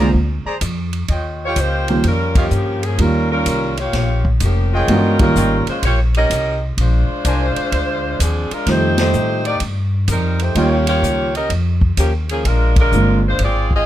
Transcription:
Already playing: C2
0.00 D3 G#3 A#3 C4 F4
0.14 D2, kick
0.45 G#4 C5 D5 A#5, muted upright bass stroke
0.61 F2, kick, hi-hat pedal, ride
0.93 ride
1.08 D#2 F4 C#5 D#5 G5, kick, ride
1.45 A#3 F4 G4 C#5
1.56 C#2 A#3 F4 G4, kick, hi-hat pedal, ride
1.60 C5
1.88 D#3 G3 A#3 C#4 F4, ride
2.04 F2 G3 C#4 F4 A#4, kick, ride
2.35 F3 A#3 C#4 F4 G4 C#5 D#5 F5, kick, ride
2.51 G2, hi-hat pedal
2.83 F3 A#3 C#4 G#4, ride
2.98 D#2 D#3 G3 A#3 C#4 F4 A#4, kick, ride
3.31 G3 C#4 F4 A#4
3.46 C2, kick, hi-hat pedal, ride
3.77 A#3 F4 G4 C#5, ride
3.93 A#1, kick, snare, ride
4.25 kick
4.40 F1 F3 A#3 C#4 G4, kick, hi-hat pedal, ride
4.73 F3 A#3 C#4 F4 G#4 C#5 D#5 G5
4.88 G1 E3 G3 G#3 B3 C#4 D4 F4 F#4 A#4, kick, ride
5.19 D#3 G3 A#3 C#4 F4 A#4, kick, ride
5.36 G#1 F4 C#5 D#5 G5, hi-hat pedal
5.67 G#3 C#4 F4 C5, muted upright bass stroke, ride
5.83 A#1 A#3 F4 G4 C#5, kick, ride
6.14 C#4 G4 A#4 D#5, ride
6.30 C2, kick, hi-hat pedal, ride
6.77 A#1 G#3 D4 F4 C5, kick, ride
7.09 muted upright bass stroke
7.25 C2 D4 A#4 C5 G#5, kick, hi-hat pedal, ride
7.56 muted upright bass stroke, ride
7.72 D2, kick, ride
8.19 D#2 F3 C4 D4 G#4, kick, hi-hat pedal, ride
8.51 G#3 D4 F4 A#4, muted upright bass stroke, ride
8.66 F2 D#3 G3 A3 C4 D#4 F4 G4 C5, kick, snare, ride
8.98 A3 D#4 G4 C5, snare, ride
9.13 A2, hi-hat pedal
9.45 A#3 D#4 G4 D5, ride
9.60 G2, kick, ride
10.08 F2 G3 C4 D#4 A#4, kick, hi-hat pedal, ride
10.39 A3 D#4 G4 C5, ride
10.55 D#2 D#3 G3 A#3 C#4 F4 G4 C#5 D#5 G5, kick, ride
10.87 A#3 F4 G4 C#5, ride
11.03 C#2, kick, hi-hat pedal
11.35 C#4 G4 A#4 D#5, ride
11.49 F2, kick, ride
11.81 kick
11.97 D#2 F3 A#3 C#4 G4, kick, hi-hat pedal, ride
12.29 F3 A#3 C#4 G#4, ride
12.45 A#1 G#3 D4 F4 A#4, kick, ride
12.76 G#3 D4 F4, kick, ride
12.80 A#4
12.92 G1 D3 G#3 A#3 C4 F4, hi-hat pedal
13.28 G#3 D4 F4 C5
13.39 G#1, kick, ride
13.44 C4 F4 G#4 D5
13.71 kick
13.75 C4 F4 G#4 D#5

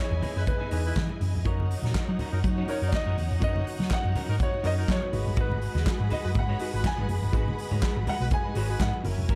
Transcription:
Already playing: E3 B3 D#4 E4 F#4 G#4 D#5 G#5
0.00 C#5
0.11 E2, muted clean electric guitar stroke, muted conga
0.22 B3 D#4 G#4 B4, open hi-hat, high conga, low conga
0.36 F#2 G#3 E4 B4, muted clean electric guitar stroke
0.47 B4, muted clean electric guitar stroke, kick, closed hi-hat, high conga
0.60 B3 D#4 G#4 B4
0.71 E2 E3 G#3 B3 D#4 E4 G#4 B4 C#5, open hi-hat
0.85 G#3 E4 B4, muted clean electric guitar stroke
0.96 E3, muted clean electric guitar stroke, kick, snare, clap, closed hi-hat, muted conga, high conga
1.09 muted clean electric guitar stroke, muted conga
1.21 F#2, open hi-hat, high conga
1.34 F2, muted clean electric guitar stroke, low conga
1.45 F#2 F#3 C#4 D#4 F#4 A#4 C#5 F#5, kick, closed hi-hat
1.60 muted conga, high conga
1.70 muted clean electric guitar stroke, open hi-hat
1.82 A#2 F#3 C#4 D#4 A#4, snare, high conga
1.95 muted picked electric bass stroke, kick, snare, clap, closed hi-hat
2.09 F#3, muted clean electric guitar stroke
2.19 F#3 C#4 D#4 A#4, open hi-hat, high conga, low conga
2.33 F#2 F#3 D#4 A#4, muted clean electric guitar stroke
2.44 F#3, muted clean electric guitar stroke, kick, closed hi-hat, high conga
2.58 F#3 C#4 D#4 C#5, muted conga
2.67 F#3 C#4 D#4 A#4 C#5, open hi-hat
2.82 F#2 F#3 D#4 A#4, muted clean electric guitar stroke
2.88 D5
2.92 D#5, muted clean electric guitar stroke, kick, snare, clap, closed hi-hat, muted conga, high conga
3.06 F#2 F#3 C#4 D#4 A#4, muted conga
3.17 E2, muted clean electric guitar stroke, open hi-hat, high conga
3.31 F2, muted clean electric guitar stroke, low conga
3.40 F#2 F#3 C#4 D#4 A#4 B4 D#5, kick, closed hi-hat, muted conga, low conga
3.47 C#5
3.56 muted conga, high conga
3.67 muted clean electric guitar stroke, open hi-hat
3.79 F#3 C#4 D#4 C#5, snare, high conga
3.91 F#5, kick, snare, clap
4.05 F#2, muted clean electric guitar stroke, muted conga
4.15 F#3 C#4 D#4 A#4, open hi-hat, high conga, low conga
4.28 G#2 F#3 D#4 A#4, muted clean electric guitar stroke
4.40 C#5, muted clean electric guitar stroke, kick, closed hi-hat, muted conga, high conga
4.53 muted clean electric guitar stroke, muted conga
4.63 F#2 F#3 C#4 D#4 A#4 C#5 D#5, open hi-hat
4.78 F#3 D#4 A#4, muted clean electric guitar stroke
4.88 F#3 C#5, kick, snare, clap, closed hi-hat, high conga
5.02 muted clean electric guitar stroke, muted conga
5.12 G#1 G#3 D#4 F#4 G#4 B4 F#5 B5, open hi-hat, high conga
5.26 G1, muted clean electric guitar stroke, low conga
5.36 G#1 G#3 D#4 F#4 B4, kick, closed hi-hat, muted conga
5.41 B4
5.52 muted conga, high conga
5.62 muted clean electric guitar stroke, open hi-hat
5.74 D#2 G#3 D#4 F#4 B4, snare, high conga
5.86 muted picked electric bass stroke, kick, snare, clap, closed hi-hat
6.00 G#2, muted clean electric guitar stroke, muted conga
6.10 G#3 D#4 F#4 B4 D#5, open hi-hat, high conga, low conga
6.24 F#2 G#3 F#4 B4, muted clean electric guitar stroke
6.35 G#2, muted clean electric guitar stroke, kick, closed hi-hat, muted conga, high conga
6.39 F#5
6.49 G#3 D#4 F#4 C#5, muted conga
6.60 G#3 D#4 F#4 B4, open hi-hat
6.73 G#1 G#3 F#4 B4, muted clean electric guitar stroke
6.84 G#5, kick, snare, clap, closed hi-hat, muted conga, high conga
6.97 G#1 G#3 D#4 F#4 B4, muted conga
7.08 F#1, open hi-hat, high conga
7.22 G1, muted clean electric guitar stroke, low conga
7.32 G#1 G#3 D#4 F#4 B4, kick, closed hi-hat, muted conga
7.48 muted conga, high conga
7.57 muted clean electric guitar stroke, open hi-hat
7.71 G#2 G#3 D#4 F#4 C#5, high conga
7.82 muted clean electric guitar stroke, kick, snare, clap, closed hi-hat
7.95 G#1, muted clean electric guitar stroke, muted conga
8.06 G#3 D#4 F#4 B4 F#5, open hi-hat, high conga, low conga
8.20 B1 G#3 F#4 B4, muted clean electric guitar stroke
8.31 G#5, muted clean electric guitar stroke, kick, closed hi-hat, muted conga, high conga
8.44 G#3 D#4 F#4 B4
8.54 G#1 G#3 D#4 F#4 B4 C#5, open hi-hat
8.69 G#3 F#4 B4, muted clean electric guitar stroke
8.79 G#2 F#5, kick, snare, clap, closed hi-hat, muted conga, high conga
8.93 muted clean electric guitar stroke, muted conga
9.03 F#1 F#3 C#4 E4 A#4 C#5 G#5, open hi-hat, high conga
9.18 F1, muted clean electric guitar stroke, low conga
9.28 F#1 F#3 C#4 E4 A#4, kick, closed hi-hat, muted conga

